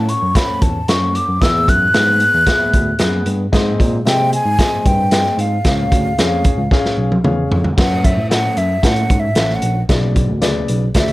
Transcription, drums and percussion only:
0.09 closed hi-hat medium
0.35 kick medium
0.35 snare loud
0.35 closed hi-hat loud
0.62 kick loud
0.62 closed hi-hat medium
0.88 snare loud
0.88 closed hi-hat medium
1.15 closed hi-hat medium
1.42 kick loud
1.42 snare loud
1.42 closed hi-hat medium
1.68 kick medium
1.68 closed hi-hat medium
1.94 snare loud
1.94 closed hi-hat medium
2.20 closed hi-hat medium
2.47 kick medium
2.47 snare loud
2.47 closed hi-hat loud
2.74 kick medium
2.74 closed hi-hat medium
2.99 snare loud
2.99 closed hi-hat medium
3.26 closed hi-hat medium
3.53 kick loud
3.53 snare loud
3.53 closed hi-hat medium
3.80 kick medium
3.80 closed hi-hat medium
4.07 snare loud
4.07 closed hi-hat medium
4.33 closed hi-hat medium
4.59 kick medium
4.59 snare loud
4.59 closed hi-hat medium
4.86 kick loud
4.86 closed hi-hat medium
5.11 snare loud
5.11 closed hi-hat medium
5.26 snare soft
5.39 closed hi-hat medium
5.65 kick loud
5.65 snare loud
5.65 closed hi-hat medium
5.92 kick medium
5.92 closed hi-hat medium
6.18 snare loud
6.18 closed hi-hat medium
6.44 kick medium
6.44 closed hi-hat medium
6.71 kick medium
6.71 snare medium
6.86 snare medium
7.12 high tom medium
7.24 mid tom medium
7.52 floor tom loud
7.64 floor tom medium
7.78 kick loud
7.78 snare loud
7.78 crash medium
8.04 kick medium
8.04 closed hi-hat medium
8.31 snare loud
8.31 closed hi-hat medium
8.57 closed hi-hat medium
8.83 kick medium
8.83 snare loud
8.83 closed hi-hat loud
8.96 closed hi-hat soft
9.10 kick medium
9.10 closed hi-hat medium
9.35 snare loud
9.35 closed hi-hat medium
9.50 snare soft
9.62 closed hi-hat medium
9.89 kick loud
9.89 snare loud
9.89 closed hi-hat medium
10.16 kick medium
10.16 closed hi-hat medium
10.42 snare loud
10.42 closed hi-hat medium
10.68 closed hi-hat medium
10.95 kick medium
10.95 snare loud
10.95 closed hi-hat medium
11.08 closed hi-hat soft

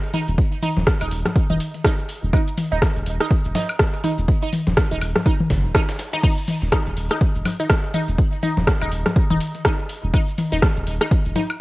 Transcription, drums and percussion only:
0.04 closed hi-hat soft
0.14 closed hi-hat medium
0.14 open hi-hat medium
0.14 high tom medium
0.14 shaker soft
0.28 shaker soft
0.38 kick loud
0.38 closed hi-hat medium
0.52 closed hi-hat soft
0.62 closed hi-hat medium
0.62 open hi-hat medium
0.62 high tom medium
0.62 shaker soft
0.77 snare medium
0.77 low conga medium
0.87 kick loud
0.87 cross-stick medium
0.87 snare loud
0.87 closed hi-hat medium
1.01 open hi-hat soft
1.01 high woodblock medium
1.01 shaker soft
1.11 closed hi-hat medium
1.11 open hi-hat medium
1.25 cross-stick medium
1.25 snare soft
1.25 low conga medium
1.25 shaker soft
1.36 kick loud
1.36 closed hi-hat medium
1.50 high tom medium
1.60 closed hi-hat medium
1.60 open hi-hat medium
1.60 shaker soft
1.74 closed hi-hat soft
1.84 kick loud
1.84 cross-stick medium
1.84 snare loud
1.84 closed hi-hat medium
1.99 shaker soft
2.09 closed hi-hat medium
2.09 open hi-hat medium
2.09 shaker soft
2.33 kick loud
2.33 closed hi-hat medium
2.33 high woodblock medium
2.47 shaker soft
2.58 open hi-hat medium
2.58 high tom medium
2.58 shaker soft
2.72 snare soft
2.82 kick loud
2.82 cross-stick medium
2.82 snare loud
2.82 closed hi-hat medium
2.96 shaker soft
3.06 closed hi-hat medium
3.06 open hi-hat medium
3.21 cross-stick medium
3.21 snare soft
3.21 shaker soft
3.31 kick loud
3.31 closed hi-hat medium
3.45 shaker soft
3.55 snare loud
3.55 closed hi-hat medium
3.55 open hi-hat medium
3.55 low conga medium
3.69 high woodblock medium
3.69 shaker soft
3.79 kick loud
3.79 cross-stick medium
3.79 snare loud
3.79 closed hi-hat medium
3.94 closed hi-hat soft
4.04 closed hi-hat medium
4.04 open hi-hat medium
4.04 high tom medium
4.04 shaker soft
4.18 shaker soft
4.28 kick loud
4.28 closed hi-hat medium
4.42 closed hi-hat soft
4.42 shaker medium
4.53 closed hi-hat medium
4.53 open hi-hat medium
4.53 high tom medium
4.53 shaker soft
4.67 snare medium
4.67 closed hi-hat soft
4.67 low conga medium
4.77 kick loud
4.77 cross-stick medium
4.77 snare loud
4.77 closed hi-hat medium
4.91 open hi-hat soft
4.91 shaker soft
5.01 closed hi-hat medium
5.01 open hi-hat medium
5.01 high woodblock medium
5.16 cross-stick medium
5.16 snare soft
5.16 low conga medium
5.16 shaker soft
5.26 kick loud
5.26 closed hi-hat medium
5.40 high tom medium
5.50 kick medium
5.50 snare loud
5.50 closed hi-hat medium
5.50 open hi-hat medium
5.50 shaker soft
5.75 kick loud
5.75 cross-stick loud
5.75 snare loud
5.75 closed hi-hat medium
5.89 snare loud
5.89 closed hi-hat medium
5.89 shaker soft
5.99 snare loud
5.99 closed hi-hat medium
5.99 open hi-hat medium
5.99 shaker soft
6.13 snare loud
6.13 closed hi-hat medium
6.13 closed hi-hat soft
6.23 kick loud
6.23 closed hi-hat medium
6.23 crash medium
6.38 shaker soft
6.48 open hi-hat medium
6.48 high tom medium
6.48 shaker soft
6.62 snare soft
6.72 kick loud
6.72 cross-stick loud
6.72 snare loud
6.72 closed hi-hat medium
6.86 shaker soft
6.96 closed hi-hat medium
6.96 open hi-hat medium
7.11 cross-stick medium
7.11 snare medium
7.11 shaker soft
7.21 kick loud
7.21 closed hi-hat medium
7.35 shaker soft
7.45 closed hi-hat medium
7.45 open hi-hat medium
7.45 low conga medium
7.45 high woodblock medium
7.60 shaker soft
7.70 kick loud
7.70 cross-stick loud
7.70 snare loud
7.70 closed hi-hat medium
7.84 closed hi-hat soft
7.94 closed hi-hat medium
7.94 open hi-hat medium
7.94 high tom medium
7.94 shaker soft
8.08 shaker soft
8.18 kick loud
8.18 closed hi-hat medium
8.33 closed hi-hat soft
8.43 closed hi-hat medium
8.43 open hi-hat medium
8.43 high tom medium
8.43 shaker soft
8.57 snare medium
8.57 low conga medium
8.67 kick loud
8.67 cross-stick loud
8.67 snare loud
8.67 closed hi-hat medium
8.82 open hi-hat soft
8.82 high woodblock medium
8.82 shaker soft
8.92 closed hi-hat medium
8.92 open hi-hat medium
9.06 cross-stick medium
9.06 snare soft
9.06 low conga medium
9.06 shaker soft
9.16 kick loud
9.16 closed hi-hat medium
9.30 high tom medium
9.40 closed hi-hat medium
9.40 open hi-hat medium
9.40 shaker soft
9.55 closed hi-hat soft
9.65 kick loud
9.65 cross-stick loud
9.65 snare loud
9.65 closed hi-hat medium
9.79 shaker soft
9.89 closed hi-hat medium
9.89 open hi-hat medium
9.89 shaker soft
10.14 kick loud
10.14 closed hi-hat medium
10.14 high woodblock medium
10.28 shaker soft
10.38 open hi-hat medium
10.38 high tom medium
10.38 shaker soft
10.52 snare soft
10.62 kick loud
10.62 cross-stick loud
10.62 snare loud
10.62 closed hi-hat medium
10.77 shaker soft
10.87 closed hi-hat medium
10.87 open hi-hat medium
11.01 cross-stick medium
11.01 snare soft
11.01 shaker soft
11.11 kick loud
11.11 closed hi-hat medium
11.25 shaker soft
11.36 closed hi-hat medium
11.36 open hi-hat medium
11.36 low conga medium
11.50 high woodblock medium
11.50 shaker soft

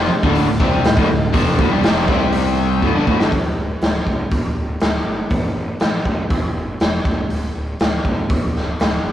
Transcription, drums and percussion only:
0.23 kick medium
0.35 open hi-hat medium
0.60 kick loud
0.84 snare loud
0.84 open hi-hat medium
0.97 kick loud
1.34 kick loud
1.34 open hi-hat medium
1.59 kick loud
1.83 snare loud
1.83 open hi-hat medium
2.08 kick loud
2.32 open hi-hat medium
2.82 kick medium
3.07 kick medium
3.20 snare medium
3.32 kick loud
3.32 open hi-hat soft
3.81 snare medium
3.81 open hi-hat soft
4.07 kick medium
4.31 kick loud
4.31 open hi-hat soft
4.80 snare loud
4.80 open hi-hat soft
5.30 kick loud
5.30 open hi-hat soft
5.80 snare medium
5.80 open hi-hat soft
6.05 kick medium
6.30 kick loud
6.30 open hi-hat soft
6.80 snare loud
6.80 open hi-hat soft
7.05 kick medium
7.30 open hi-hat soft
7.80 snare loud
7.80 open hi-hat soft
8.05 kick medium
8.30 kick loud
8.30 open hi-hat soft
8.56 snare soft
8.80 snare loud
8.80 open hi-hat soft

